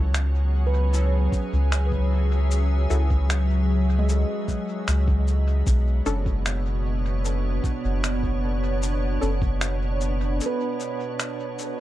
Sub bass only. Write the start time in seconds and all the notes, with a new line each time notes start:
Already playing: C#2
1.53 C#2
2.90 C#2
4.88 C#2
5.67 B1
6.06 F#1
7.84 F#1
9.22 F#1